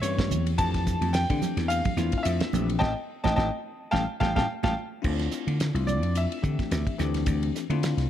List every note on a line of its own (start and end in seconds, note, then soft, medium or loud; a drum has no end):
0.02 0.32 G2 medium
0.02 0.54 E3 medium
0.02 0.54 A#3 medium
0.02 0.54 C4 medium
0.02 0.55 C#4 medium
0.02 0.54 G4 medium
0.02 0.43 C#5 medium
0.02 hi-hat pedal medium
0.02 ride medium
0.19 kick medium
0.19 snare medium
0.19 ride medium
0.19 high conga medium
0.30 0.53 E2 medium
0.30 hi-hat pedal medium
0.30 high conga medium
0.30 low conga medium
0.47 ride medium
0.57 0.94 F2 medium
0.57 1.23 E3 medium
0.57 1.23 A3 medium
0.57 1.23 C4 medium
0.57 1.23 D4 medium
0.57 1.23 G4 medium
0.57 1.16 A5 medium
0.57 kick medium
0.57 hi-hat pedal medium
0.57 ride medium
0.74 kick medium
0.74 snare soft
0.74 ride medium
0.87 kick medium
0.87 snare soft
0.87 hi-hat pedal medium
1.01 1.24 F2 medium
1.01 ride medium
1.01 high conga medium
1.13 1.71 G5 medium
1.13 snare loud
1.13 hi-hat pedal medium
1.13 ride medium
1.30 1.40 D3 medium
1.30 1.93 E3 medium
1.30 1.93 A3 medium
1.30 1.93 C4 medium
1.30 1.92 D4 medium
1.30 1.93 G4 medium
1.30 kick medium
1.30 ride medium
1.41 muted slap bass stroke soft
1.41 snare soft
1.41 hi-hat pedal medium
1.41 low conga medium
1.57 1.80 E2 medium
1.57 snare soft
1.57 ride medium
1.68 2.16 F5 medium
1.68 hi-hat pedal medium
1.68 ride medium
1.85 kick medium
1.85 ride medium
1.85 low conga medium
1.97 2.10 E2 medium
1.97 2.49 A3 medium
1.97 2.49 C4 medium
1.97 2.50 D4 medium
1.97 2.49 E4 medium
1.97 2.50 F4 medium
1.97 snare soft
1.97 hi-hat pedal medium
1.97 high conga medium
2.12 kick medium
2.12 ride medium
2.18 2.25 F5 medium
2.23 2.38 F2 medium
2.23 2.65 E5 medium
2.23 hi-hat pedal medium
2.23 ride medium
2.40 snare loud
2.40 ride medium
2.40 high conga medium
2.53 2.76 A#1 medium
2.53 2.82 E3 medium
2.53 2.81 A3 medium
2.53 2.81 C4 medium
2.53 2.82 D4 medium
2.53 2.83 G4 medium
2.53 hi-hat pedal medium
2.53 high conga medium
2.53 low conga medium
2.70 ride medium
2.79 2.93 A1 medium
2.79 2.92 A3 medium
2.79 2.92 C4 medium
2.79 2.92 D#4 medium
2.79 2.90 D#5 medium
2.79 2.90 G5 medium
2.79 2.90 A5 medium
2.79 kick medium
2.79 snare medium
2.79 high conga medium
3.24 3.34 A1 medium
3.24 3.34 A3 medium
3.24 3.34 C4 medium
3.24 3.34 D#4 medium
3.24 3.32 D#5 medium
3.24 3.33 G5 medium
3.24 3.32 A5 medium
3.24 kick medium
3.24 snare medium
3.24 high conga medium
3.36 3.49 A1 medium
3.36 3.48 A3 medium
3.36 3.48 C4 medium
3.36 3.48 D#4 medium
3.36 3.46 D#5 medium
3.36 3.47 G5 medium
3.36 3.47 A5 medium
3.36 kick medium
3.36 snare medium
3.36 high conga medium
3.91 4.05 A1 medium
3.91 4.04 G3 medium
3.91 4.04 A3 medium
3.91 4.04 C#4 medium
3.91 4.02 F5 medium
3.91 4.02 G5 medium
3.91 4.02 A5 medium
3.91 kick medium
3.91 snare medium
3.91 high conga medium
4.20 4.32 A1 medium
4.20 4.31 G3 medium
4.20 4.31 A3 loud
4.20 4.31 C#4 medium
4.20 4.30 F5 loud
4.20 4.31 G5 loud
4.20 4.30 A5 medium
4.20 kick medium
4.20 snare medium
4.20 high conga medium
4.35 4.46 A1 medium
4.35 4.44 G3 medium
4.35 4.44 A3 medium
4.35 4.44 C#4 medium
4.35 4.44 F5 medium
4.35 4.44 G5 loud
4.35 4.44 A5 medium
4.35 kick medium
4.35 snare medium
4.35 high conga medium
4.63 4.73 A1 medium
4.63 4.72 G3 medium
4.63 4.72 A3 medium
4.63 4.72 C#4 medium
4.63 4.72 F5 medium
4.63 4.72 G5 medium
4.63 4.72 A5 medium
4.63 kick medium
4.63 snare medium
4.63 high conga medium
5.02 5.27 D2 loud
5.02 5.68 A3 medium
5.02 5.68 C4 medium
5.02 5.68 D4 medium
5.02 5.68 E4 medium
5.02 5.68 F4 medium
5.02 kick loud
5.02 crash medium
5.19 snare soft
5.19 ride medium
5.31 snare soft
5.31 hi-hat pedal medium
5.47 5.70 D3 medium
5.47 ride medium
5.47 high conga medium
5.60 snare loud
5.60 hi-hat pedal medium
5.60 ride medium
5.74 6.02 C2 medium
5.74 6.38 A3 medium
5.74 6.38 C4 medium
5.74 6.38 D4 medium
5.74 6.38 E4 medium
5.74 6.38 F4 medium
5.74 ride medium
5.87 6.15 D5 medium
5.87 hi-hat pedal medium
5.87 high conga medium
5.87 low conga medium
6.02 6.25 F2 medium
6.02 ride medium
6.15 6.96 E5 medium
6.15 hi-hat pedal medium
6.15 ride medium
6.32 ride medium
6.42 6.56 D3 medium
6.42 6.95 E3 medium
6.42 6.95 A3 medium
6.42 6.95 C4 medium
6.42 6.95 D4 medium
6.42 6.95 G4 medium
6.42 kick medium
6.42 hi-hat pedal medium
6.59 kick medium
6.59 snare soft
6.59 ride soft
6.59 high conga medium
6.71 6.84 D2 medium
6.71 snare medium
6.71 hi-hat pedal medium
6.71 ride medium
6.87 kick medium
6.87 ride medium
6.98 7.22 D2 medium
6.98 7.63 E3 medium
6.98 7.64 A3 medium
6.98 7.64 C4 medium
6.98 7.64 D4 medium
6.98 7.64 G4 medium
6.98 snare soft
6.98 hi-hat pedal medium
6.98 low conga medium
7.14 snare soft
7.14 ride medium
7.14 high conga medium
7.26 7.50 D2 loud
7.26 kick loud
7.26 hi-hat pedal medium
7.26 ride medium
7.43 ride medium
7.55 snare soft
7.55 hi-hat pedal medium
7.70 7.93 D3 medium
7.70 8.10 A3 medium
7.70 8.10 C4 medium
7.70 8.10 D4 medium
7.70 8.10 E4 medium
7.70 8.10 F4 loud
7.70 ride medium
7.70 high conga medium
7.83 snare medium
7.83 hi-hat pedal medium
7.83 ride medium
7.97 8.10 C2 medium
7.97 snare soft
7.97 ride medium